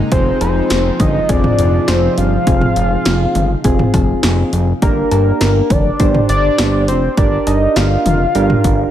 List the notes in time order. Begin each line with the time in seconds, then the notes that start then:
Already playing: C3 G#3 D#4
0.12 F1 F3 C4 F4 G#4 C5, kick, closed hi-hat
0.41 F1 C5, closed hi-hat, cowbell
0.70 F1, snare, closed hi-hat
1.00 G1 D#5, kick, closed hi-hat, mid tom
1.29 F1 C4 F4 G#4 D5, kick, closed hi-hat
1.44 mid tom
1.59 F1, closed hi-hat
1.88 F1 C5, snare, closed hi-hat
2.18 G1 F5, closed hi-hat
2.47 F1 C4 F4 G#4, kick, closed hi-hat
2.61 mid tom
2.76 F1, closed hi-hat
3.05 F1, snare, closed hi-hat
3.35 G1, closed hi-hat, mid tom
3.64 F1 C4 F4 G#4, kick, closed hi-hat
3.79 mid tom
3.94 F1, kick, closed hi-hat, cowbell
4.23 F1, snare, closed hi-hat
4.53 F1, closed hi-hat
4.82 G1 D4 G4 A#4, kick, closed hi-hat
5.11 G1 A#4, closed hi-hat, cowbell
5.41 G1, snare, closed hi-hat
5.70 F1 D5, kick, closed hi-hat, mid tom
6.00 G1 D4 G4 C5, kick, closed hi-hat
6.15 mid tom
6.29 G1 D5, closed hi-hat
6.58 G1, snare, closed hi-hat
6.88 F1 C5, closed hi-hat
7.17 G1 D4 G4 A#4 D5, kick, closed hi-hat
7.47 G1 D#5, closed hi-hat, cowbell
7.76 G1 F5, snare, closed hi-hat
8.06 F1, closed hi-hat, mid tom
8.35 G1 D4 G4 A#4, closed hi-hat
8.50 mid tom
8.64 G1, kick, closed hi-hat